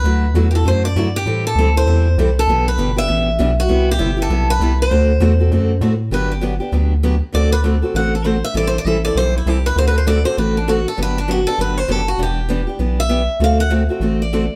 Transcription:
Already playing: B4
0.04 D2 D3 F#3 A3 E4 F#4
0.34 E2 D3 F#3 A3 E4 F#4
0.51 F#4 G4
0.55 A3 E4 A4
0.65 F#2 D3 F#3 A3 E4 F#4 C5
0.85 D5
0.96 G2 D3 F#3 A3 E4 F#4
1.16 G4
1.26 A2 E3 G3 C4 E4 A4
1.47 A4
1.55 D2 E3 G3 C4 E4 A4
1.76 C4 E4 A4 C5
1.87 E2 E3 G3 C4 E4 A4
2.18 C2 E3 G3 C4 E4 A4
2.39 A4
2.48 B1 B2 E3 B3 D4 G4
2.68 B4
2.78 G1 B2 E3 B3 D4 G4
2.96 B3 D4 G4 E5
3.08 A1 B2 E3 B3 D4 G4
3.39 B1 B2 E3 B3 D4 G4
3.60 F#4
3.68 C2 C3 G3 B3 E4 G4
3.91 G4
3.99 G1 C3 G3 B3 E4 G4
4.17 B3 E4 G4
4.22 A4
4.30 B1 C3 G3 B3 E4 G4
4.50 B4
4.60 C2 C3 G3 B3 E4 G4
4.82 C5
4.91 D2 D3 A3 C4 F#4 A4
5.20 E2 D3 A3 C4 F#4 A4
5.40 C4 F#4 A4
5.51 F#2 D3 A3 C4 F#4 A4
5.81 A2 D3 A3 C4 F#4 A4
6.11 G1 D3 F#3 B3 D4 G4 B4
6.32 G4
6.41 D3 F#3 B3 D4 G4
6.60 B3 D4 G4
6.72 D2 D3 F#3 B3 D4 G4
7.03 D3 F#3 B3 D4 G4
7.32 D2 D3 A3 C4 F#4 A4 D5
7.52 B4
7.64 D3 A3 C4 F#4 A4
7.82 C4 F#4 A4
7.94 A1 D3 A3 C4 F#4 A4 F#5
8.15 A4
8.24 D3 A3 C4 F#4 A4 C5
8.44 E5
8.54 A1 E3 G3 C4 E4 A4 D5
8.67 C5
8.78 D5
8.85 A1 E3 G3 C4 E4 A4 E5
9.05 C4 E4 A4 D5
9.15 B1 E3 G3 C4 E4 A4 C5
9.38 E4
9.46 C2 E3 G3 C4 E4 G4 A4
9.66 B4
9.76 D2 D3 A3 C4 F#4 A4 C5
9.87 B4
9.98 C5
10.07 D3 A3 C4 F#4 A4 D5
10.24 C4 F#4 A4 C5
10.37 A1 D3 A3 C4 F#4 A4 B4
10.57 D4
10.68 D3 A3 C4 F#4 A4
10.88 A4
10.97 G1 D3 F#3 B3 D4 G4
11.02 B4
11.18 D4
11.28 D3 F#3 B3 D4 F#4 G4
11.47 B3 D4 G4 A4
11.58 G1 D3 F#3 B3 D4 G4 B4
11.78 C5
11.88 F#1 D3 F#3 B3 D4 G4 A4
12.08 F#4
12.18 E1 E3 B3 D4 G4
12.23 G4
12.49 E3 B3 D4 G4
12.67 B3 D4 G4
12.79 B1 E3 B3 D4 G4
13.00 E5
13.09 E3 B3 D4 G4
13.40 D2 D3 A3 C4 F#4 A4
13.44 F5
13.60 F#5
13.70 D3 A3 C4 F#4 A4
13.89 C4 F#4 A4
14.00 A1 D3 A3 C4 F#4 A4
14.22 D5
14.33 D3 A3 C4 F#4 A4

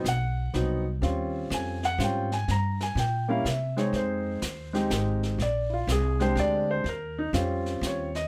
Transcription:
0.04 B1 F#5, snare, hi-hat pedal
0.54 C2 F#3 B3 C4 D#4, snare
1.01 D#2 G3 C4 C#4 F4, brush sweep, snare
1.50 F2 G#5, snare, hi-hat pedal
1.83 F#5, snare
1.98 G#2 G3 C4 C#4 F4, snare, hi-hat pedal
2.04 G5
2.32 G#5, snare
2.48 G2 A#5, brush sweep, snare
2.81 G#5, snare
2.95 A#2 G5, snare
3.28 G3 A#3 C#4 E4 F5
3.45 C3 E5, snare, hi-hat pedal
3.77 G#3 C4 D#4 G#4 C#5, snare
3.93 F2 C5, brush sweep, snare
4.42 D#2, snare, hi-hat pedal
4.73 G#3 C4 D#4 G4, snare
4.90 G#1, snare, hi-hat pedal
5.23 snare
5.38 A#1 D5, brush sweep, snare
5.70 E4 F4
5.87 C2, snare, hi-hat pedal
5.92 G#4
6.20 G#3 C4 D4 G4 C5, snare
6.35 D2 D5, snare
6.71 C5
6.84 D#2, brush sweep, snare
6.89 A#4
7.18 D#4
7.33 F2 G3 C4 C#4 F4, snare, hi-hat pedal
7.66 snare
7.81 D#2, snare, hi-hat pedal
7.86 C#5
8.15 D#5, snare

